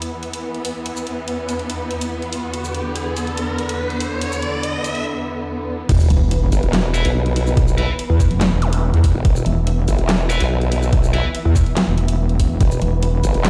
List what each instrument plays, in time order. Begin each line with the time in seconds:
Already playing: string section E2 E3 B3, riser
0.02 closed hi-hat
0.23 closed hi-hat
0.33 closed hi-hat
0.55 closed hi-hat
0.65 open hi-hat
0.86 closed hi-hat
0.96 shaker
1.07 closed hi-hat
1.28 closed hi-hat
1.49 open hi-hat, shaker
1.59 closed hi-hat
1.70 closed hi-hat
1.91 closed hi-hat
2.01 closed hi-hat, shaker
2.22 closed hi-hat
2.33 open hi-hat
2.54 string section D3, closed hi-hat
2.64 shaker
2.75 closed hi-hat
2.96 closed hi-hat
3.17 open hi-hat, shaker
3.27 closed hi-hat
3.37 closed hi-hat
3.58 closed hi-hat
3.69 closed hi-hat
3.90 closed hi-hat
4.00 open hi-hat
4.21 closed hi-hat
4.32 shaker
4.42 closed hi-hat
4.63 closed hi-hat
4.84 open hi-hat, shaker
4.95 closed hi-hat
5.89 wobble bass E1, string section E3 B3 B4, kick, closed hi-hat, crash, sub drop
6.00 shaker
6.10 wobble bass E1, closed hi-hat
6.31 closed hi-hat
6.52 wobble bass G1, closed hi-hat, shaker
6.63 wobble bass E1, closed hi-hat
6.73 snare, clap, closed hi-hat
6.94 distorted electric guitar E4 B4 E5, closed hi-hat, shaker
7.05 wobble bass B1, closed hi-hat
7.26 closed hi-hat
7.36 open hi-hat
7.47 shaker
7.57 kick, closed hi-hat
7.68 shaker
7.78 distorted electric guitar E4 B4 E5, closed hi-hat
7.99 closed hi-hat
8.10 wobble bass E2
8.20 kick, closed hi-hat, shaker
8.31 wobble bass F1, closed hi-hat
8.41 snare, clap, closed hi-hat
8.52 wobble bass E1
8.62 closed hi-hat, zap
8.73 closed hi-hat
8.94 wobble bass E2, closed hi-hat
9.04 kick, open hi-hat
9.15 wobble bass E1
9.25 wobble bass E1, string section E5, kick, closed hi-hat
9.36 shaker
9.46 wobble bass E1, closed hi-hat
9.67 closed hi-hat
9.88 wobble bass G1, closed hi-hat, shaker
9.99 wobble bass E1, closed hi-hat
10.09 snare, clap, closed hi-hat
10.29 distorted electric guitar E4 B4 E5, closed hi-hat, shaker
10.40 wobble bass B1, closed hi-hat
10.61 closed hi-hat
10.72 open hi-hat
10.82 shaker
10.93 kick, closed hi-hat
11.03 shaker
11.13 distorted electric guitar E4 B4 E5, closed hi-hat
11.35 closed hi-hat
11.45 wobble bass E2
11.56 kick, closed hi-hat, shaker
11.66 closed hi-hat
11.77 snare, clap, closed hi-hat
11.87 wobble bass E1
11.98 closed hi-hat
12.08 closed hi-hat
12.29 closed hi-hat
12.40 kick, open hi-hat
12.61 wobble bass E1, string section B4, kick, closed hi-hat
12.71 shaker
12.82 wobble bass E1, closed hi-hat
13.03 closed hi-hat
13.24 wobble bass G1, closed hi-hat, shaker
13.34 wobble bass E1, closed hi-hat
13.45 snare, clap, closed hi-hat